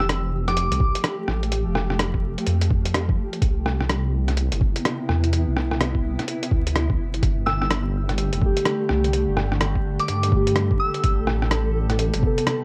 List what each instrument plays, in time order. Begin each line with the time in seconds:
Already playing: detuned saw bass F1, ambient pad F3 A3 G4
0.00 cross-stick
0.09 cross-stick, closed hi-hat
0.48 synth bell D6, cross-stick, closed hi-hat
0.57 closed hi-hat
0.71 detuned saw bass C2, closed hi-hat
0.80 kick
0.95 closed hi-hat
1.04 cross-stick, closed hi-hat
1.28 detuned saw bass A1, cross-stick
1.43 closed hi-hat
1.52 closed hi-hat
1.66 detuned saw bass F1
1.75 cross-stick
1.90 cross-stick
1.99 cross-stick, closed hi-hat
2.14 kick
2.38 closed hi-hat
2.46 detuned saw bass F2, closed hi-hat
2.61 closed hi-hat
2.70 kick
2.85 closed hi-hat
2.94 cross-stick, closed hi-hat
3.09 kick
3.33 closed hi-hat
3.42 detuned saw bass C2, ambient pad C3 B3 E4, kick, closed hi-hat
3.66 cross-stick
3.81 cross-stick
3.89 cross-stick, closed hi-hat
4.28 cross-stick, closed hi-hat
4.37 closed hi-hat
4.52 detuned saw bass G1, closed hi-hat
4.61 kick
4.76 closed hi-hat
4.85 cross-stick, closed hi-hat
5.09 detuned saw bass E2, cross-stick
5.24 closed hi-hat
5.33 closed hi-hat
5.48 detuned saw bass C2
5.57 cross-stick
5.71 cross-stick
5.81 cross-stick, closed hi-hat
5.95 kick
6.19 cross-stick, closed hi-hat
6.28 closed hi-hat
6.43 closed hi-hat
6.51 detuned saw bass D2, kick
6.67 closed hi-hat
6.76 cross-stick, closed hi-hat
6.90 kick
6.99 detuned saw bass G1
7.14 closed hi-hat
7.21 detuned saw bass G1, ambient pad D3 A3 G4, synth texture G3 G4, kick, closed hi-hat
7.46 synth bell E6, cross-stick
7.61 synth bell E6, cross-stick
7.71 cross-stick, closed hi-hat
8.09 cross-stick, closed hi-hat
8.18 closed hi-hat
8.33 detuned saw bass F1, closed hi-hat
8.38 synth keys D3, kick
8.42 synth keys A3
8.46 synth keys G4
8.57 closed hi-hat
8.65 cross-stick, closed hi-hat
8.89 detuned saw bass C2, cross-stick
9.04 closed hi-hat
9.13 ambient pad A4, closed hi-hat
9.28 detuned saw bass G1
9.37 cross-stick
9.52 cross-stick
9.61 cross-stick, closed hi-hat
9.75 kick
9.99 synth bell D6, closed hi-hat
10.08 detuned saw bass G2, closed hi-hat
10.23 closed hi-hat
10.28 synth keys D3 A3, kick
10.36 synth keys G4
10.47 closed hi-hat
10.56 cross-stick, closed hi-hat
10.71 kick
10.80 synth bell E6
10.94 closed hi-hat
11.04 detuned saw bass A1, ambient pad C3 B3, kick, closed hi-hat
11.27 cross-stick
11.42 cross-stick
11.51 cross-stick, closed hi-hat
11.90 cross-stick, closed hi-hat
11.99 closed hi-hat
12.14 detuned saw bass G1, closed hi-hat
12.19 synth keys C3 B3
12.23 synth keys A4, kick
12.38 closed hi-hat
12.47 cross-stick, closed hi-hat